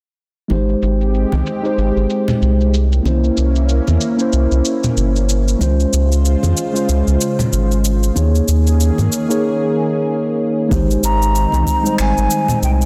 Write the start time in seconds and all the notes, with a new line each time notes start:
0.48 G#1 G#3 C4 D#4 G4, high conga, cabasa
0.53 C5
0.69 cabasa
0.82 G#1, cabasa
1.01 cabasa
1.15 cabasa
1.32 C2, high conga, cabasa
1.46 cabasa
1.62 G#3 D#4 G4, cabasa
1.66 C5
1.78 G#1, cabasa
1.96 G#1, cabasa
2.10 cabasa
2.28 low conga, cabasa
2.42 C2, cabasa
2.61 cabasa
2.74 A#3 C#4 E4, cabasa
2.92 cabasa
3.03 C2 A#3 C#4 E4, high conga, cabasa
3.08 C5
3.24 cabasa
3.37 C2, cabasa
3.56 cabasa
3.69 cabasa
3.87 E2, high conga, cabasa
4.01 cabasa
4.17 A#3 C#4 E4, cabasa
4.22 C5
4.33 C2, cabasa
4.51 C2, cabasa
4.65 cabasa
4.84 low conga, cabasa
4.97 G1, cabasa
5.16 cabasa
5.29 cabasa
5.48 cabasa
5.59 C#2 C#3 G#3 C#4 F4 C5, high conga, cabasa
5.63 C5
5.80 cabasa
5.93 C#2, cabasa
6.12 cabasa
6.25 cabasa
6.43 F2, high conga, cabasa
6.57 cabasa
6.73 G#3 C#4 F4 C5, cabasa
6.89 C#2, cabasa
7.07 C#2, cabasa
7.21 cabasa
7.39 low conga, cabasa
7.52 G#1, cabasa
7.72 cabasa
7.85 cabasa
8.03 cabasa
8.14 D#2 D#3 A#3 C#4 D#4 G#4 C#5, high conga, cabasa
8.35 cabasa
8.48 D#2, cabasa
8.67 cabasa
8.81 cabasa
8.98 G#2, high conga, cabasa
9.12 cabasa
9.29 A#3 D#4 G#4 C#5, cabasa
10.69 G#1 D#3 G#3 C4 D#4 G4, kick, high conga, cabasa
10.73 C5
10.91 cabasa
11.03 G#1 A#5, cabasa
11.22 cabasa
11.36 cabasa
11.52 C2, high conga, cabasa
11.67 kick, cabasa
11.83 G3 G#3 D#4, cabasa
11.87 C5
11.98 G#1 G#5, finger snap, cabasa
12.17 G#1, cabasa
12.31 cabasa
12.48 low conga, cabasa
12.62 C2 G5, cabasa
12.82 cabasa